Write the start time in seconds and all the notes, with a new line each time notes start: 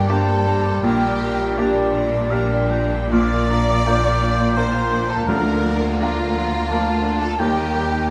Already playing: G1 G2 G3 A#3 D4 G4 D5
0.08 A#3 D4 G4 A4 C5 A5 A#5
0.27 G3 A#3 G5
0.46 A#3 D4 A#5
0.64 G3 A#3 G5
0.82 A#1 A#2 A#3 D4 G4 A#4 G5 A#5
1.01 G3 A#3 G5
1.20 A#3 D4 A#5
1.39 G3 A#3 G5
1.57 A#3 D4 G4 D5 A#5
1.75 G3 A#3 G5
1.92 A#3 D4 A#5
2.11 G3 A#3 G5
2.30 A#3 D4 G4 F5 A#5
2.48 G3 A#3 G5
2.70 A#3 D4 G5 A#5
2.91 G3 A#3 G5
3.12 A#1 A#2 F3 A#3 D4 F4 D5 F5 D6
3.31 A#3 F4 F5
3.50 F3 D4 D5 A#5
3.68 A#3 F4 F5
3.86 F3 A#3 D4 F4 A#4 D5 G5
4.03 A#3 F4 F5
4.21 F3 D4 D5
4.38 A#3 F4 F5
4.56 F3 A#3 D4 F4 A#4 C5 D5 C6
4.73 A#3 F4 F5
4.91 F3 D4 D5
5.09 A#3 F4 A4 F5 A5
5.27 D2 D3 F3 D4 A#4 D5 F5 A#5
5.46 A#3 F4 F5
5.63 F3 D4 D5
5.81 A#3 F4 F5
5.99 F3 A#3 D4 F4 A#4 D5 F5 A#5
6.18 A#3 F4 F5
6.36 F3 D4 D5
6.53 A#3 F4 F5
6.69 F3 A#3 D4 F4 A#4 D5 A5
6.86 A#3 F4 F5
7.03 F3 D4 D5
7.21 A#3 F4 A4 F5 A5
7.37 D#2 D#3 G3 A#3 D#4 G4 G5
7.56 A#3 A#4 D#5
7.73 G3 G4 G5
7.92 A#3 A#4 D#5